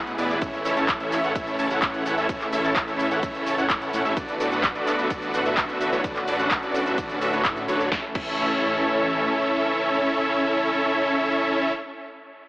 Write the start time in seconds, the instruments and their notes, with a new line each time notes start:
Already playing: detuned saw bass A1, analog synth pad B2 E3 G#3 E4, supersaw synth B3 E4 G#4 B4 F#5
0.07 closed hi-hat, cabasa
0.18 detuned saw bass A1, supersaw synth B3 E4 G#4 B4 D5, open hi-hat, cabasa
0.30 cabasa
0.42 detuned saw bass A1, analog synth pad C#3 A3 E4, supersaw synth C#4 E4 A4 C#5 E5, kick, closed hi-hat, ride, cabasa
0.53 closed hi-hat, cabasa
0.65 detuned saw bass A1, supersaw synth C#4 E4 A4 C#5 E5, open hi-hat, cabasa
0.77 detuned saw bass A1, supersaw synth C#4 E4 A4 C#5 A5, closed hi-hat, cabasa
0.89 kick, clap, closed hi-hat, ride, cabasa
1.00 detuned saw bass A1, supersaw synth C#4 E4 A4 C#5 E5, closed hi-hat, cabasa
1.12 clap, open hi-hat, cabasa
1.24 detuned saw bass A1, supersaw synth C#4 E4 A4 C#5 F#5, closed hi-hat, cabasa
1.35 detuned saw bass A1, supersaw synth C#4 E4 A4 C#5 E5, kick, closed hi-hat, ride, cabasa
1.47 closed hi-hat, cabasa
1.59 detuned saw bass A1, supersaw synth C#4 E4 A4 C#5 A5, open hi-hat, cabasa
1.71 detuned saw bass A1, supersaw synth C#4 E4 A4 C#5 F#5, closed hi-hat, cabasa
1.82 detuned saw bass A1, supersaw synth C#4 E4 A4 C#5 F#5, kick, clap, closed hi-hat, ride, cabasa
1.94 closed hi-hat, cabasa
2.06 detuned saw bass A1, supersaw synth C#4 E4 A4 C#5 F#5, open hi-hat, cabasa
2.17 detuned saw bass A1, supersaw synth C#4 E4 A4 C#5 E5, cabasa
2.29 detuned saw bass A1, supersaw synth C#4 E4 A4 C#5 E5, kick, closed hi-hat, ride, cabasa
2.41 clap, closed hi-hat, cabasa
2.53 detuned saw bass A1, supersaw synth C#4 E4 A4 C#5 E5, open hi-hat, cabasa
2.64 detuned saw bass A1, supersaw synth C#4 E4 A4 C#5 A5, closed hi-hat, cabasa
2.76 kick, clap, closed hi-hat, ride, cabasa
2.88 detuned saw bass A1, supersaw synth C#4 E4 A4 C#5 E5, closed hi-hat, cabasa
2.99 open hi-hat, cabasa
3.11 detuned saw bass A1, supersaw synth C#4 E4 A4 C#5 F#5, closed hi-hat, cabasa
3.23 detuned saw bass A1, supersaw synth C#4 E4 A4 C#5 E5, kick, closed hi-hat, ride, cabasa
3.35 closed hi-hat, cabasa
3.46 detuned saw bass A1, supersaw synth C#4 E4 A4 C#5 A5, open hi-hat, cabasa
3.58 detuned saw bass A1, supersaw synth C#4 E4 A4 C#5 F#5, closed hi-hat, cabasa
3.70 detuned saw bass A1, supersaw synth C#4 E4 A4 C#5 F#5, kick, clap, closed hi-hat, ride, cabasa
3.82 closed hi-hat, cabasa
3.93 detuned saw bass A2, supersaw synth C#4 E4 A4 C#5 F#5, open hi-hat, cabasa
4.05 detuned saw bass A1, supersaw synth C#4 E4 A4 C#5 E5, cabasa
4.17 detuned saw bass A1, analog synth pad D3 A3 B3 F#4, supersaw synth D4 F#4 A4 B4 D5, kick, closed hi-hat, ride, cabasa
4.28 closed hi-hat, cabasa
4.40 detuned saw bass A1, supersaw synth D4 F#4 A4 B4 D5, open hi-hat, cabasa
4.52 detuned saw bass A1, supersaw synth D4 F#4 A4 B4 F#5, closed hi-hat, cabasa
4.64 kick, clap, closed hi-hat, ride, cabasa
4.75 detuned saw bass A1, supersaw synth D4 F#4 A4 B4 D5, closed hi-hat, cabasa
4.87 clap, open hi-hat, cabasa
4.99 detuned saw bass A1, supersaw synth D4 F#4 A4 B4 E5, closed hi-hat, cabasa
5.10 detuned saw bass A1, supersaw synth D4 F#4 A4 B4 D5, kick, closed hi-hat, ride, cabasa
5.22 closed hi-hat, cabasa
5.34 detuned saw bass A1, supersaw synth D4 F#4 A4 B4 F#5, open hi-hat, cabasa
5.45 detuned saw bass A1, supersaw synth D4 F#4 A4 B4 E5, closed hi-hat, cabasa
5.57 detuned saw bass A1, supersaw synth D4 F#4 A4 B4 E5, kick, clap, closed hi-hat, ride, cabasa
5.69 closed hi-hat, cabasa
5.81 detuned saw bass A1, supersaw synth D4 F#4 A4 B4 E5, open hi-hat, cabasa
5.92 detuned saw bass A1, supersaw synth D4 F#4 A4 B4 C#5, cabasa
6.04 detuned saw bass A1, analog synth pad C#4, supersaw synth D4 F#4 A4 B4 D5, kick, closed hi-hat, ride, cabasa
6.16 clap, closed hi-hat, cabasa
6.28 detuned saw bass A1, supersaw synth D4 F#4 A4 B4 D5, open hi-hat, cabasa
6.39 detuned saw bass A1, supersaw synth D4 F#4 A4 B4 F#5, closed hi-hat, cabasa
6.51 kick, clap, closed hi-hat, ride, cabasa
6.63 detuned saw bass A1, supersaw synth D4 F#4 A4 B4 D5, closed hi-hat, cabasa
6.74 open hi-hat, cabasa
6.86 detuned saw bass A1, supersaw synth D4 F#4 A4 B4 E5, closed hi-hat, cabasa
6.98 detuned saw bass A1, supersaw synth D4 F#4 A4 B4 D5, kick, closed hi-hat, ride, cabasa
7.10 closed hi-hat, cabasa
7.21 detuned saw bass A1, supersaw synth D4 F#4 A4 B4 E5, open hi-hat, cabasa
7.33 detuned saw bass A1, supersaw synth D4 F#4 A4 B4 C#5, closed hi-hat, cabasa
7.45 detuned saw bass A2, supersaw synth D4 F#4 A4 B4 E5, kick, clap, closed hi-hat, ride, cabasa
7.57 closed hi-hat, cabasa
7.68 detuned saw bass A1, supersaw synth D4 F#4 A4 B4 C#5, open hi-hat, cabasa
7.80 cabasa
7.92 detuned saw bass A1, analog synth pad E3 A3 C#4 A4, supersaw synth C#4 E4 A4 C#5 E5, kick, snare
8.15 detuned saw bass A1, supersaw synth C#4 E4 A4 C#5 E5, kick, crash